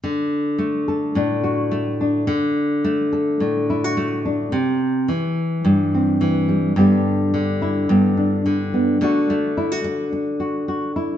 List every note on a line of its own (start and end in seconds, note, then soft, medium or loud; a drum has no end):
0.04 2.26 D3 medium
0.58 1.70 A3 medium
0.88 1.43 A4 soft
1.15 2.28 A2 medium
1.15 1.99 D4 soft
1.43 2.25 F#4 soft
1.71 2.25 A3 medium
2.01 2.26 D4 soft
2.27 4.53 D3 medium
2.84 3.96 A3 medium
3.13 3.69 A4 medium
3.40 4.52 A2 medium
3.40 4.24 D4 soft
3.70 3.84 E4 medium
3.84 4.53 F#4 soft
3.97 4.50 A3 medium
4.25 4.50 D4 medium
4.52 5.09 C3 medium
5.08 6.20 E3 medium
5.65 6.74 G2 medium
5.65 6.47 G3 medium
5.94 6.75 C4 medium
6.21 6.74 E3 medium
6.48 6.77 G3 soft
6.76 7.88 G2 medium
6.76 7.33 D3 medium
6.76 7.89 B3 medium
6.76 8.16 D4 medium
6.76 7.61 G4 medium
7.34 8.45 D3 medium
7.62 9.01 E4 medium
7.89 8.98 G2 medium
7.89 8.73 B3 medium
8.17 8.98 D4 soft
8.46 9.00 D3 medium
8.74 8.98 B3 medium
9.01 11.18 D3 medium
9.01 9.29 A3 medium
9.01 10.12 D4 medium
9.01 9.57 F#4 medium
9.30 9.84 A3 medium
9.57 9.72 E4 medium
9.72 10.39 F#4 soft
9.84 muted nylon-string guitar stroke medium
10.13 muted nylon-string guitar stroke medium
10.40 10.67 F#4 medium
10.68 10.96 F#4 medium
10.96 11.18 E4 medium